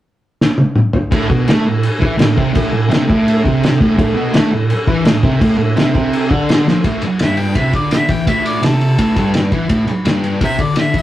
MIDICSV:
0, 0, Header, 1, 5, 480
1, 0, Start_track
1, 0, Key_signature, 0, "minor"
1, 0, Tempo, 356930
1, 1513, Time_signature, 4, 2, 24, 8
1, 14821, End_track
2, 0, Start_track
2, 0, Title_t, "Harmonica"
2, 0, Program_c, 0, 22
2, 9709, Note_on_c, 0, 76, 85
2, 9930, Note_on_c, 0, 79, 77
2, 9950, Note_off_c, 0, 76, 0
2, 10159, Note_on_c, 0, 76, 86
2, 10179, Note_off_c, 0, 79, 0
2, 10392, Note_off_c, 0, 76, 0
2, 10420, Note_on_c, 0, 74, 86
2, 10642, Note_off_c, 0, 74, 0
2, 10652, Note_on_c, 0, 76, 91
2, 10905, Note_on_c, 0, 79, 79
2, 10925, Note_off_c, 0, 76, 0
2, 11124, Note_off_c, 0, 79, 0
2, 11130, Note_on_c, 0, 76, 83
2, 11357, Note_off_c, 0, 76, 0
2, 11378, Note_on_c, 0, 74, 90
2, 11601, Note_off_c, 0, 74, 0
2, 11625, Note_on_c, 0, 69, 89
2, 12541, Note_off_c, 0, 69, 0
2, 14040, Note_on_c, 0, 76, 99
2, 14271, Note_on_c, 0, 74, 90
2, 14291, Note_off_c, 0, 76, 0
2, 14483, Note_off_c, 0, 74, 0
2, 14509, Note_on_c, 0, 76, 92
2, 14721, Note_off_c, 0, 76, 0
2, 14762, Note_on_c, 0, 76, 111
2, 14821, Note_off_c, 0, 76, 0
2, 14821, End_track
3, 0, Start_track
3, 0, Title_t, "Distorted electric guitar"
3, 0, Program_c, 1, 30
3, 1496, Note_on_c, 1, 45, 104
3, 1738, Note_off_c, 1, 45, 0
3, 1744, Note_on_c, 1, 47, 107
3, 1983, Note_off_c, 1, 47, 0
3, 1996, Note_on_c, 1, 57, 102
3, 2222, Note_on_c, 1, 45, 81
3, 2230, Note_off_c, 1, 57, 0
3, 2422, Note_off_c, 1, 45, 0
3, 2687, Note_on_c, 1, 52, 105
3, 2927, Note_off_c, 1, 52, 0
3, 2932, Note_on_c, 1, 45, 85
3, 3139, Note_off_c, 1, 45, 0
3, 3180, Note_on_c, 1, 48, 102
3, 3407, Note_off_c, 1, 48, 0
3, 3412, Note_on_c, 1, 45, 106
3, 3650, Note_off_c, 1, 45, 0
3, 3666, Note_on_c, 1, 45, 69
3, 3867, Note_off_c, 1, 45, 0
3, 3891, Note_on_c, 1, 48, 106
3, 4131, Note_off_c, 1, 48, 0
3, 4136, Note_on_c, 1, 45, 108
3, 4623, Note_off_c, 1, 45, 0
3, 4628, Note_on_c, 1, 48, 100
3, 5109, Note_off_c, 1, 48, 0
3, 5114, Note_on_c, 1, 45, 103
3, 5328, Note_off_c, 1, 45, 0
3, 5344, Note_on_c, 1, 45, 113
3, 5575, Note_off_c, 1, 45, 0
3, 5581, Note_on_c, 1, 47, 104
3, 5809, Note_on_c, 1, 57, 103
3, 5826, Note_off_c, 1, 47, 0
3, 6060, Note_off_c, 1, 57, 0
3, 6073, Note_on_c, 1, 45, 80
3, 6271, Note_off_c, 1, 45, 0
3, 6552, Note_on_c, 1, 52, 105
3, 6789, Note_off_c, 1, 52, 0
3, 6794, Note_on_c, 1, 45, 83
3, 6991, Note_off_c, 1, 45, 0
3, 7037, Note_on_c, 1, 48, 112
3, 7262, Note_off_c, 1, 48, 0
3, 7268, Note_on_c, 1, 45, 109
3, 7484, Note_off_c, 1, 45, 0
3, 7500, Note_on_c, 1, 45, 70
3, 7704, Note_off_c, 1, 45, 0
3, 7747, Note_on_c, 1, 48, 111
3, 7972, Note_off_c, 1, 48, 0
3, 7988, Note_on_c, 1, 48, 108
3, 8492, Note_off_c, 1, 48, 0
3, 8492, Note_on_c, 1, 50, 99
3, 8959, Note_off_c, 1, 50, 0
3, 8979, Note_on_c, 1, 53, 95
3, 9203, Note_off_c, 1, 53, 0
3, 9209, Note_on_c, 1, 45, 103
3, 9437, Note_off_c, 1, 45, 0
3, 9699, Note_on_c, 1, 43, 101
3, 10162, Note_off_c, 1, 43, 0
3, 10165, Note_on_c, 1, 48, 100
3, 10395, Note_off_c, 1, 48, 0
3, 10400, Note_on_c, 1, 50, 93
3, 10872, Note_off_c, 1, 50, 0
3, 10892, Note_on_c, 1, 52, 91
3, 11114, Note_off_c, 1, 52, 0
3, 11119, Note_on_c, 1, 45, 106
3, 11584, Note_off_c, 1, 45, 0
3, 11589, Note_on_c, 1, 48, 104
3, 12065, Note_off_c, 1, 48, 0
3, 12074, Note_on_c, 1, 45, 105
3, 12307, Note_off_c, 1, 45, 0
3, 12313, Note_on_c, 1, 43, 96
3, 12786, Note_off_c, 1, 43, 0
3, 12799, Note_on_c, 1, 52, 101
3, 13028, Note_off_c, 1, 52, 0
3, 13033, Note_on_c, 1, 45, 105
3, 13253, Note_off_c, 1, 45, 0
3, 13515, Note_on_c, 1, 43, 94
3, 13985, Note_off_c, 1, 43, 0
3, 13995, Note_on_c, 1, 48, 112
3, 14225, Note_off_c, 1, 48, 0
3, 14238, Note_on_c, 1, 50, 101
3, 14704, Note_off_c, 1, 50, 0
3, 14718, Note_on_c, 1, 52, 97
3, 14821, Note_off_c, 1, 52, 0
3, 14821, End_track
4, 0, Start_track
4, 0, Title_t, "Muted distorted electric guitar strokes"
4, 9457, Note_on_c, 9, 29, 57
4, 9591, Note_off_c, 9, 29, 0
4, 13269, Note_on_c, 9, 29, 57
4, 13404, Note_off_c, 9, 29, 0
4, 14821, End_track
5, 0, Start_track
5, 0, Title_t, "Drums"
5, 557, Note_on_c, 9, 38, 80
5, 691, Note_off_c, 9, 38, 0
5, 777, Note_on_c, 9, 48, 80
5, 911, Note_off_c, 9, 48, 0
5, 1016, Note_on_c, 9, 47, 98
5, 1150, Note_off_c, 9, 47, 0
5, 1256, Note_on_c, 9, 43, 100
5, 1390, Note_off_c, 9, 43, 0
5, 1502, Note_on_c, 9, 49, 67
5, 1505, Note_on_c, 9, 36, 111
5, 1636, Note_off_c, 9, 49, 0
5, 1640, Note_off_c, 9, 36, 0
5, 1747, Note_on_c, 9, 36, 107
5, 1881, Note_off_c, 9, 36, 0
5, 1985, Note_on_c, 9, 49, 67
5, 2004, Note_on_c, 9, 38, 106
5, 2119, Note_off_c, 9, 49, 0
5, 2138, Note_off_c, 9, 38, 0
5, 2462, Note_on_c, 9, 49, 67
5, 2597, Note_off_c, 9, 49, 0
5, 2715, Note_on_c, 9, 36, 115
5, 2850, Note_off_c, 9, 36, 0
5, 2945, Note_on_c, 9, 49, 71
5, 2963, Note_on_c, 9, 38, 115
5, 3079, Note_off_c, 9, 49, 0
5, 3098, Note_off_c, 9, 38, 0
5, 3197, Note_on_c, 9, 36, 110
5, 3331, Note_off_c, 9, 36, 0
5, 3430, Note_on_c, 9, 49, 69
5, 3439, Note_on_c, 9, 36, 108
5, 3565, Note_off_c, 9, 49, 0
5, 3573, Note_off_c, 9, 36, 0
5, 3916, Note_on_c, 9, 49, 62
5, 3935, Note_on_c, 9, 38, 106
5, 4051, Note_off_c, 9, 49, 0
5, 4070, Note_off_c, 9, 38, 0
5, 4163, Note_on_c, 9, 36, 107
5, 4298, Note_off_c, 9, 36, 0
5, 4409, Note_on_c, 9, 49, 66
5, 4543, Note_off_c, 9, 49, 0
5, 4646, Note_on_c, 9, 36, 109
5, 4780, Note_off_c, 9, 36, 0
5, 4886, Note_on_c, 9, 49, 67
5, 4904, Note_on_c, 9, 38, 127
5, 5020, Note_off_c, 9, 49, 0
5, 5039, Note_off_c, 9, 38, 0
5, 5121, Note_on_c, 9, 36, 109
5, 5255, Note_off_c, 9, 36, 0
5, 5360, Note_on_c, 9, 36, 121
5, 5363, Note_on_c, 9, 49, 60
5, 5494, Note_off_c, 9, 36, 0
5, 5497, Note_off_c, 9, 49, 0
5, 5834, Note_on_c, 9, 49, 67
5, 5853, Note_on_c, 9, 38, 122
5, 5968, Note_off_c, 9, 49, 0
5, 5987, Note_off_c, 9, 38, 0
5, 6318, Note_on_c, 9, 49, 64
5, 6452, Note_off_c, 9, 49, 0
5, 6557, Note_on_c, 9, 36, 110
5, 6691, Note_off_c, 9, 36, 0
5, 6793, Note_on_c, 9, 49, 70
5, 6812, Note_on_c, 9, 38, 127
5, 6927, Note_off_c, 9, 49, 0
5, 6946, Note_off_c, 9, 38, 0
5, 7037, Note_on_c, 9, 36, 118
5, 7172, Note_off_c, 9, 36, 0
5, 7277, Note_on_c, 9, 36, 116
5, 7279, Note_on_c, 9, 49, 66
5, 7411, Note_off_c, 9, 36, 0
5, 7414, Note_off_c, 9, 49, 0
5, 7756, Note_on_c, 9, 49, 65
5, 7775, Note_on_c, 9, 38, 114
5, 7891, Note_off_c, 9, 49, 0
5, 7909, Note_off_c, 9, 38, 0
5, 8002, Note_on_c, 9, 36, 110
5, 8136, Note_off_c, 9, 36, 0
5, 8245, Note_on_c, 9, 49, 66
5, 8380, Note_off_c, 9, 49, 0
5, 8482, Note_on_c, 9, 36, 106
5, 8617, Note_off_c, 9, 36, 0
5, 8726, Note_on_c, 9, 49, 68
5, 8745, Note_on_c, 9, 38, 120
5, 8860, Note_off_c, 9, 49, 0
5, 8879, Note_off_c, 9, 38, 0
5, 8985, Note_on_c, 9, 38, 70
5, 9120, Note_off_c, 9, 38, 0
5, 9201, Note_on_c, 9, 51, 90
5, 9202, Note_on_c, 9, 36, 105
5, 9335, Note_off_c, 9, 51, 0
5, 9336, Note_off_c, 9, 36, 0
5, 9435, Note_on_c, 9, 51, 73
5, 9569, Note_off_c, 9, 51, 0
5, 9673, Note_on_c, 9, 51, 96
5, 9692, Note_on_c, 9, 38, 109
5, 9807, Note_off_c, 9, 51, 0
5, 9826, Note_off_c, 9, 38, 0
5, 9913, Note_on_c, 9, 51, 69
5, 10047, Note_off_c, 9, 51, 0
5, 10156, Note_on_c, 9, 51, 99
5, 10159, Note_on_c, 9, 36, 103
5, 10291, Note_off_c, 9, 51, 0
5, 10294, Note_off_c, 9, 36, 0
5, 10398, Note_on_c, 9, 51, 71
5, 10402, Note_on_c, 9, 36, 104
5, 10533, Note_off_c, 9, 51, 0
5, 10536, Note_off_c, 9, 36, 0
5, 10638, Note_on_c, 9, 51, 104
5, 10657, Note_on_c, 9, 38, 109
5, 10773, Note_off_c, 9, 51, 0
5, 10791, Note_off_c, 9, 38, 0
5, 10873, Note_on_c, 9, 51, 73
5, 10880, Note_on_c, 9, 36, 111
5, 11007, Note_off_c, 9, 51, 0
5, 11014, Note_off_c, 9, 36, 0
5, 11122, Note_on_c, 9, 36, 100
5, 11124, Note_on_c, 9, 51, 107
5, 11256, Note_off_c, 9, 36, 0
5, 11259, Note_off_c, 9, 51, 0
5, 11371, Note_on_c, 9, 51, 78
5, 11505, Note_off_c, 9, 51, 0
5, 11605, Note_on_c, 9, 51, 99
5, 11623, Note_on_c, 9, 38, 118
5, 11739, Note_off_c, 9, 51, 0
5, 11758, Note_off_c, 9, 38, 0
5, 11849, Note_on_c, 9, 51, 60
5, 11984, Note_off_c, 9, 51, 0
5, 12083, Note_on_c, 9, 51, 98
5, 12086, Note_on_c, 9, 36, 97
5, 12217, Note_off_c, 9, 51, 0
5, 12220, Note_off_c, 9, 36, 0
5, 12323, Note_on_c, 9, 51, 67
5, 12325, Note_on_c, 9, 36, 99
5, 12457, Note_off_c, 9, 51, 0
5, 12459, Note_off_c, 9, 36, 0
5, 12558, Note_on_c, 9, 51, 91
5, 12577, Note_on_c, 9, 38, 117
5, 12693, Note_off_c, 9, 51, 0
5, 12712, Note_off_c, 9, 38, 0
5, 12800, Note_on_c, 9, 51, 66
5, 12802, Note_on_c, 9, 36, 100
5, 12934, Note_off_c, 9, 51, 0
5, 12936, Note_off_c, 9, 36, 0
5, 13037, Note_on_c, 9, 51, 94
5, 13042, Note_on_c, 9, 36, 112
5, 13171, Note_off_c, 9, 51, 0
5, 13177, Note_off_c, 9, 36, 0
5, 13280, Note_on_c, 9, 51, 64
5, 13414, Note_off_c, 9, 51, 0
5, 13520, Note_on_c, 9, 51, 100
5, 13539, Note_on_c, 9, 38, 102
5, 13654, Note_off_c, 9, 51, 0
5, 13673, Note_off_c, 9, 38, 0
5, 13767, Note_on_c, 9, 51, 71
5, 13902, Note_off_c, 9, 51, 0
5, 13999, Note_on_c, 9, 51, 99
5, 14000, Note_on_c, 9, 36, 114
5, 14133, Note_off_c, 9, 51, 0
5, 14134, Note_off_c, 9, 36, 0
5, 14235, Note_on_c, 9, 51, 73
5, 14238, Note_on_c, 9, 36, 98
5, 14370, Note_off_c, 9, 51, 0
5, 14373, Note_off_c, 9, 36, 0
5, 14466, Note_on_c, 9, 51, 103
5, 14485, Note_on_c, 9, 38, 113
5, 14600, Note_off_c, 9, 51, 0
5, 14619, Note_off_c, 9, 38, 0
5, 14711, Note_on_c, 9, 51, 76
5, 14713, Note_on_c, 9, 36, 113
5, 14821, Note_off_c, 9, 36, 0
5, 14821, Note_off_c, 9, 51, 0
5, 14821, End_track
0, 0, End_of_file